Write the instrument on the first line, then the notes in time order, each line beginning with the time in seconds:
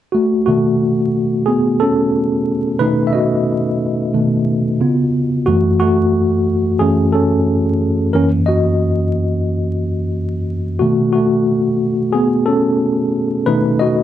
tine electric piano
0.12 A3 F#4
0.46 B2 D#3 A3 F#4
1.46 B3 G#4
1.80 C#4 A4
2.79 B2 D#3 A3 D#4 B4
3.07 E5
3.13 F#4 D#5
4.14 B2 D#3 A3
4.80 C#3 B3 F4
5.46 F#2 E3 A3 F#4
5.80 A3 F#4
6.79 F#2 E3 A3 C#4 G#4
7.12 C#4 A4
8.13 F#2 E3 A#3 C#4 A#4
8.46 F#4 D#5
10.79 B2 D#3 A3 F#4
11.13 A3 F#4
12.13 B3 G#4
12.46 C#4 A4
13.46 B2 D#3 A3 D#4 B4
13.79 F#4 D#5